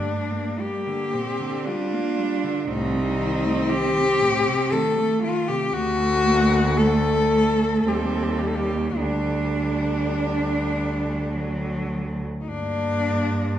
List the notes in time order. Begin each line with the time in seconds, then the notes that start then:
Already playing: G2 D4
0.01 G3 A3
0.31 A#3
0.59 G3 A#3 G4
0.87 D3
1.13 A#2 C4
1.40 D3
1.65 G3 D4 F4
1.93 A#3
2.18 G3
2.44 D3
2.68 C2 A2 C4 D#4
2.95 C3
3.19 D#3
3.45 A3
3.70 D#3 G4
3.96 C3
4.21 A2
4.47 C3
4.72 D#3 A3 A4
4.97 A3
5.23 D#3 F4
5.48 C3 G4
5.73 D2 A3 F#4
6.24 A#3
6.76 A3 A4
7.86 D#2 G3 C4 G4
7.96 A4
8.04 G4
8.13 A4
8.23 G4
8.30 A4
8.39 A#3 G4
8.47 A4
8.55 G4
8.99 D2 G3 D4
11.32 F#3
12.41 D#4
12.47 G2 A#3 D4